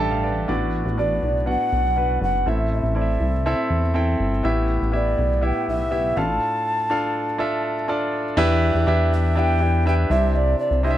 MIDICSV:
0, 0, Header, 1, 4, 480
1, 0, Start_track
1, 0, Tempo, 491803
1, 486, Time_signature, 4, 2, 24, 8
1, 10715, End_track
2, 0, Start_track
2, 0, Title_t, "Ocarina"
2, 0, Program_c, 0, 79
2, 961, Note_on_c, 0, 74, 77
2, 1411, Note_off_c, 0, 74, 0
2, 1462, Note_on_c, 0, 78, 93
2, 2137, Note_off_c, 0, 78, 0
2, 2176, Note_on_c, 0, 78, 84
2, 2425, Note_on_c, 0, 76, 82
2, 2439, Note_off_c, 0, 78, 0
2, 2653, Note_off_c, 0, 76, 0
2, 2659, Note_on_c, 0, 76, 83
2, 3576, Note_off_c, 0, 76, 0
2, 4827, Note_on_c, 0, 74, 76
2, 5313, Note_on_c, 0, 79, 90
2, 5328, Note_off_c, 0, 74, 0
2, 5541, Note_off_c, 0, 79, 0
2, 5546, Note_on_c, 0, 76, 101
2, 6019, Note_on_c, 0, 81, 102
2, 6033, Note_off_c, 0, 76, 0
2, 7696, Note_off_c, 0, 81, 0
2, 8913, Note_on_c, 0, 76, 91
2, 9161, Note_on_c, 0, 79, 106
2, 9175, Note_off_c, 0, 76, 0
2, 9625, Note_off_c, 0, 79, 0
2, 9640, Note_on_c, 0, 79, 106
2, 9698, Note_off_c, 0, 79, 0
2, 9863, Note_on_c, 0, 76, 94
2, 10104, Note_on_c, 0, 74, 92
2, 10119, Note_off_c, 0, 76, 0
2, 10326, Note_off_c, 0, 74, 0
2, 10332, Note_on_c, 0, 74, 94
2, 10553, Note_off_c, 0, 74, 0
2, 10578, Note_on_c, 0, 76, 96
2, 10715, Note_off_c, 0, 76, 0
2, 10715, End_track
3, 0, Start_track
3, 0, Title_t, "Grand piano"
3, 0, Program_c, 1, 0
3, 0, Control_c, 1, 64, 127
3, 0, Note_on_c, 1, 43, 85
3, 0, Note_on_c, 1, 62, 71
3, 0, Note_on_c, 1, 67, 67
3, 0, Note_on_c, 1, 69, 80
3, 0, Note_on_c, 1, 79, 72
3, 0, Note_on_c, 1, 81, 77
3, 3, Note_on_c, 1, 76, 55
3, 108, Note_on_c, 1, 77, 59
3, 111, Note_off_c, 1, 81, 0
3, 198, Note_off_c, 1, 43, 0
3, 226, Note_off_c, 1, 79, 0
3, 232, Note_on_c, 1, 74, 65
3, 233, Note_off_c, 1, 76, 0
3, 237, Note_on_c, 1, 71, 50
3, 451, Note_off_c, 1, 77, 0
3, 463, Note_off_c, 1, 74, 0
3, 468, Note_on_c, 1, 59, 73
3, 469, Note_off_c, 1, 62, 0
3, 469, Note_on_c, 1, 62, 71
3, 476, Note_on_c, 1, 66, 63
3, 477, Note_on_c, 1, 45, 65
3, 478, Note_on_c, 1, 74, 86
3, 497, Control_c, 1, 64, 0
3, 503, Note_off_c, 1, 69, 0
3, 505, Note_off_c, 1, 67, 0
3, 661, Control_c, 1, 64, 127
3, 698, Note_off_c, 1, 71, 0
3, 824, Note_off_c, 1, 59, 0
3, 825, Note_off_c, 1, 62, 0
3, 828, Note_off_c, 1, 66, 0
3, 829, Note_off_c, 1, 74, 0
3, 950, Note_on_c, 1, 59, 60
3, 955, Note_on_c, 1, 62, 60
3, 961, Note_on_c, 1, 66, 58
3, 968, Note_on_c, 1, 74, 67
3, 1163, Note_off_c, 1, 45, 0
3, 1306, Note_off_c, 1, 59, 0
3, 1308, Note_off_c, 1, 62, 0
3, 1311, Note_off_c, 1, 66, 0
3, 1314, Note_off_c, 1, 74, 0
3, 1426, Note_on_c, 1, 59, 65
3, 1427, Note_on_c, 1, 62, 65
3, 1433, Note_on_c, 1, 66, 62
3, 1436, Note_on_c, 1, 78, 67
3, 1784, Note_off_c, 1, 59, 0
3, 1784, Note_off_c, 1, 62, 0
3, 1787, Note_off_c, 1, 66, 0
3, 1789, Note_off_c, 1, 78, 0
3, 1912, Note_on_c, 1, 62, 59
3, 1914, Note_on_c, 1, 59, 67
3, 1919, Note_on_c, 1, 66, 58
3, 1925, Note_on_c, 1, 71, 68
3, 2267, Note_off_c, 1, 62, 0
3, 2268, Note_off_c, 1, 59, 0
3, 2271, Note_off_c, 1, 66, 0
3, 2274, Note_off_c, 1, 71, 0
3, 2400, Note_on_c, 1, 60, 62
3, 2407, Note_on_c, 1, 64, 58
3, 2407, Note_on_c, 1, 69, 64
3, 2408, Note_on_c, 1, 45, 55
3, 2417, Note_on_c, 1, 76, 73
3, 2419, Control_c, 1, 64, 0
3, 2578, Control_c, 1, 64, 127
3, 2752, Note_off_c, 1, 60, 0
3, 2755, Note_off_c, 1, 64, 0
3, 2755, Note_off_c, 1, 69, 0
3, 2760, Note_off_c, 1, 76, 0
3, 2875, Note_on_c, 1, 60, 60
3, 2878, Note_on_c, 1, 64, 61
3, 2888, Note_on_c, 1, 69, 59
3, 2888, Note_on_c, 1, 74, 58
3, 2944, Note_on_c, 1, 76, 69
3, 2946, Note_off_c, 1, 74, 0
3, 3091, Note_off_c, 1, 45, 0
3, 3229, Note_off_c, 1, 60, 0
3, 3231, Note_off_c, 1, 64, 0
3, 3236, Note_off_c, 1, 69, 0
3, 3264, Note_off_c, 1, 76, 0
3, 3374, Note_on_c, 1, 64, 78
3, 3375, Note_on_c, 1, 60, 89
3, 3377, Note_on_c, 1, 69, 77
3, 3384, Note_on_c, 1, 76, 93
3, 3720, Note_off_c, 1, 60, 0
3, 3720, Note_off_c, 1, 64, 0
3, 3721, Note_off_c, 1, 69, 0
3, 3725, Note_off_c, 1, 76, 0
3, 3845, Note_on_c, 1, 60, 81
3, 3853, Note_on_c, 1, 64, 75
3, 3854, Note_on_c, 1, 69, 71
3, 3862, Note_on_c, 1, 79, 85
3, 4195, Note_off_c, 1, 60, 0
3, 4199, Note_off_c, 1, 64, 0
3, 4200, Note_off_c, 1, 69, 0
3, 4204, Note_off_c, 1, 79, 0
3, 4326, Note_on_c, 1, 59, 80
3, 4329, Note_on_c, 1, 64, 73
3, 4336, Note_on_c, 1, 45, 74
3, 4341, Note_on_c, 1, 67, 73
3, 4342, Note_on_c, 1, 76, 90
3, 4346, Control_c, 1, 64, 0
3, 4526, Control_c, 1, 64, 127
3, 4676, Note_off_c, 1, 59, 0
3, 4678, Note_off_c, 1, 64, 0
3, 4683, Note_off_c, 1, 67, 0
3, 4684, Note_off_c, 1, 76, 0
3, 4799, Note_on_c, 1, 59, 60
3, 4804, Note_on_c, 1, 64, 63
3, 4812, Note_on_c, 1, 67, 60
3, 4816, Note_on_c, 1, 76, 76
3, 5016, Note_off_c, 1, 45, 0
3, 5153, Note_off_c, 1, 59, 0
3, 5155, Note_off_c, 1, 64, 0
3, 5159, Note_off_c, 1, 67, 0
3, 5161, Note_off_c, 1, 76, 0
3, 5284, Note_on_c, 1, 59, 74
3, 5292, Note_on_c, 1, 64, 69
3, 5297, Note_on_c, 1, 67, 64
3, 5298, Note_on_c, 1, 76, 79
3, 5635, Note_off_c, 1, 59, 0
3, 5640, Note_off_c, 1, 64, 0
3, 5642, Note_off_c, 1, 67, 0
3, 5642, Note_off_c, 1, 76, 0
3, 5765, Note_on_c, 1, 59, 67
3, 5771, Note_on_c, 1, 64, 62
3, 5772, Note_on_c, 1, 67, 62
3, 5775, Note_on_c, 1, 76, 75
3, 6009, Note_off_c, 1, 59, 0
3, 6012, Note_off_c, 1, 64, 0
3, 6013, Note_off_c, 1, 67, 0
3, 6014, Note_off_c, 1, 76, 0
3, 6016, Note_on_c, 1, 62, 63
3, 6017, Note_on_c, 1, 65, 66
3, 6022, Note_on_c, 1, 45, 55
3, 6023, Note_on_c, 1, 69, 67
3, 6026, Control_c, 1, 64, 0
3, 6026, Note_on_c, 1, 77, 73
3, 6220, Control_c, 1, 64, 127
3, 6591, Note_off_c, 1, 62, 0
3, 6591, Note_off_c, 1, 65, 0
3, 6594, Note_off_c, 1, 69, 0
3, 6596, Note_off_c, 1, 77, 0
3, 6698, Note_off_c, 1, 45, 0
3, 6733, Note_on_c, 1, 62, 81
3, 6738, Note_on_c, 1, 65, 70
3, 6741, Note_on_c, 1, 69, 76
3, 6744, Note_on_c, 1, 77, 88
3, 7080, Note_off_c, 1, 62, 0
3, 7082, Note_off_c, 1, 65, 0
3, 7084, Note_off_c, 1, 69, 0
3, 7085, Note_off_c, 1, 77, 0
3, 7206, Note_on_c, 1, 62, 88
3, 7211, Note_on_c, 1, 65, 77
3, 7215, Note_on_c, 1, 69, 77
3, 7222, Note_on_c, 1, 76, 95
3, 7556, Note_off_c, 1, 62, 0
3, 7559, Note_off_c, 1, 65, 0
3, 7561, Note_off_c, 1, 69, 0
3, 7564, Note_off_c, 1, 76, 0
3, 7692, Note_on_c, 1, 62, 81
3, 7696, Note_on_c, 1, 65, 79
3, 7698, Note_on_c, 1, 69, 78
3, 7704, Note_on_c, 1, 74, 91
3, 8039, Note_off_c, 1, 62, 0
3, 8041, Note_off_c, 1, 65, 0
3, 8042, Note_off_c, 1, 69, 0
3, 8045, Note_off_c, 1, 74, 0
3, 8169, Note_on_c, 1, 62, 117
3, 8173, Note_on_c, 1, 64, 109
3, 8173, Note_on_c, 1, 67, 109
3, 8174, Note_on_c, 1, 52, 75
3, 8177, Note_on_c, 1, 71, 109
3, 8180, Note_on_c, 1, 76, 125
3, 8184, Control_c, 1, 64, 0
3, 8348, Control_c, 1, 64, 127
3, 8517, Note_off_c, 1, 62, 0
3, 8519, Note_off_c, 1, 64, 0
3, 8519, Note_off_c, 1, 67, 0
3, 8521, Note_off_c, 1, 71, 0
3, 8522, Note_off_c, 1, 76, 0
3, 8656, Note_on_c, 1, 62, 95
3, 8659, Note_on_c, 1, 64, 77
3, 8664, Note_on_c, 1, 67, 87
3, 8666, Note_on_c, 1, 71, 77
3, 8667, Note_on_c, 1, 76, 99
3, 8853, Note_off_c, 1, 52, 0
3, 9000, Note_off_c, 1, 62, 0
3, 9001, Note_off_c, 1, 64, 0
3, 9004, Note_off_c, 1, 67, 0
3, 9005, Note_off_c, 1, 71, 0
3, 9005, Note_off_c, 1, 76, 0
3, 9130, Note_on_c, 1, 62, 80
3, 9137, Note_on_c, 1, 64, 66
3, 9140, Note_on_c, 1, 71, 75
3, 9143, Note_on_c, 1, 67, 74
3, 9146, Note_on_c, 1, 76, 79
3, 9303, Note_off_c, 1, 62, 0
3, 9307, Note_off_c, 1, 64, 0
3, 9308, Note_off_c, 1, 71, 0
3, 9310, Note_off_c, 1, 67, 0
3, 9311, Note_off_c, 1, 76, 0
3, 9373, Note_on_c, 1, 62, 68
3, 9376, Note_on_c, 1, 64, 59
3, 9380, Note_on_c, 1, 67, 57
3, 9386, Note_on_c, 1, 71, 53
3, 9388, Note_on_c, 1, 76, 69
3, 9545, Note_off_c, 1, 62, 0
3, 9546, Note_off_c, 1, 64, 0
3, 9548, Note_off_c, 1, 67, 0
3, 9551, Note_off_c, 1, 71, 0
3, 9552, Note_off_c, 1, 76, 0
3, 9619, Note_on_c, 1, 62, 76
3, 9620, Note_on_c, 1, 64, 71
3, 9623, Note_on_c, 1, 67, 73
3, 9625, Note_on_c, 1, 71, 71
3, 9631, Note_on_c, 1, 76, 90
3, 9842, Note_off_c, 1, 62, 0
3, 9847, Note_off_c, 1, 64, 0
3, 9852, Note_off_c, 1, 76, 0
3, 9853, Note_off_c, 1, 67, 0
3, 9856, Note_on_c, 1, 62, 71
3, 9857, Note_off_c, 1, 71, 0
3, 9861, Note_on_c, 1, 64, 69
3, 9862, Note_on_c, 1, 48, 58
3, 9863, Control_c, 1, 64, 0
3, 9865, Note_on_c, 1, 72, 64
3, 9867, Note_on_c, 1, 76, 86
3, 9868, Note_on_c, 1, 67, 69
3, 10013, Control_c, 1, 64, 127
3, 10428, Note_off_c, 1, 62, 0
3, 10430, Note_off_c, 1, 64, 0
3, 10432, Note_off_c, 1, 72, 0
3, 10433, Note_off_c, 1, 67, 0
3, 10433, Note_off_c, 1, 76, 0
3, 10535, Note_off_c, 1, 48, 0
3, 10572, Note_on_c, 1, 62, 72
3, 10578, Note_on_c, 1, 64, 72
3, 10583, Note_on_c, 1, 72, 68
3, 10584, Note_on_c, 1, 67, 71
3, 10585, Note_on_c, 1, 75, 66
3, 10634, Note_off_c, 1, 75, 0
3, 10643, Note_on_c, 1, 76, 83
3, 10715, Note_off_c, 1, 62, 0
3, 10715, Note_off_c, 1, 64, 0
3, 10715, Note_off_c, 1, 67, 0
3, 10715, Note_off_c, 1, 72, 0
3, 10715, Note_off_c, 1, 76, 0
3, 10715, End_track
4, 0, Start_track
4, 0, Title_t, "Analog synth bass"
4, 0, Program_c, 2, 38
4, 0, Note_on_c, 2, 33, 89
4, 453, Note_off_c, 2, 33, 0
4, 479, Note_on_c, 2, 33, 93
4, 817, Note_off_c, 2, 33, 0
4, 833, Note_on_c, 2, 33, 99
4, 1175, Note_off_c, 2, 33, 0
4, 1195, Note_on_c, 2, 35, 92
4, 1536, Note_off_c, 2, 35, 0
4, 1684, Note_on_c, 2, 35, 80
4, 2133, Note_off_c, 2, 35, 0
4, 2161, Note_on_c, 2, 30, 94
4, 2388, Note_off_c, 2, 30, 0
4, 2406, Note_on_c, 2, 33, 100
4, 2743, Note_off_c, 2, 33, 0
4, 2767, Note_on_c, 2, 33, 92
4, 3103, Note_off_c, 2, 33, 0
4, 3127, Note_on_c, 2, 36, 82
4, 3464, Note_off_c, 2, 36, 0
4, 3614, Note_on_c, 2, 40, 75
4, 4060, Note_off_c, 2, 40, 0
4, 4097, Note_on_c, 2, 31, 90
4, 4318, Note_off_c, 2, 31, 0
4, 4342, Note_on_c, 2, 33, 114
4, 4672, Note_off_c, 2, 33, 0
4, 4702, Note_on_c, 2, 33, 88
4, 5033, Note_off_c, 2, 33, 0
4, 5063, Note_on_c, 2, 35, 94
4, 5393, Note_off_c, 2, 35, 0
4, 5545, Note_on_c, 2, 35, 83
4, 5986, Note_off_c, 2, 35, 0
4, 6021, Note_on_c, 2, 33, 99
4, 6241, Note_off_c, 2, 33, 0
4, 8170, Note_on_c, 2, 40, 118
4, 8506, Note_off_c, 2, 40, 0
4, 8537, Note_on_c, 2, 40, 93
4, 8646, Note_off_c, 2, 40, 0
4, 8660, Note_on_c, 2, 40, 97
4, 9815, Note_off_c, 2, 40, 0
4, 9859, Note_on_c, 2, 36, 112
4, 10300, Note_off_c, 2, 36, 0
4, 10452, Note_on_c, 2, 36, 99
4, 10715, Note_off_c, 2, 36, 0
4, 10715, End_track
0, 0, End_of_file